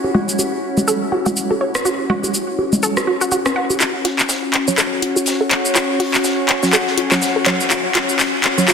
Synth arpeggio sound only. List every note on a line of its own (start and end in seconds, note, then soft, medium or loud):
0.14 0.17 F#4 loud
0.88 0.93 A4 loud
1.12 1.14 F#4 medium
1.26 1.29 F#4 medium
1.51 1.53 A4 medium
1.61 1.63 C#5 medium
1.85 1.89 F#4 medium
2.10 2.12 F#4 loud
2.83 2.89 A4 loud
3.07 3.11 F#4 medium
3.21 3.23 F#4 loud
3.32 3.34 F#4 medium
3.46 3.48 C#4 medium
3.56 3.60 F#5 medium
3.80 3.84 F#4 medium
4.05 4.07 F#4 loud
4.78 4.84 A4 medium
5.02 5.05 F#4 medium
5.16 5.19 F#4 medium
5.41 5.44 A4 medium
5.51 5.53 C#5 medium
5.75 5.79 F#4 medium
6.00 6.02 F#4 loud
6.73 6.79 A4 loud
6.97 7.00 F#4 medium
7.12 7.14 F#4 medium
7.36 7.39 A4 medium
7.46 7.49 C#5 medium
7.71 7.75 F#4 medium
7.95 7.97 F#4 medium
8.68 8.72 F#4 medium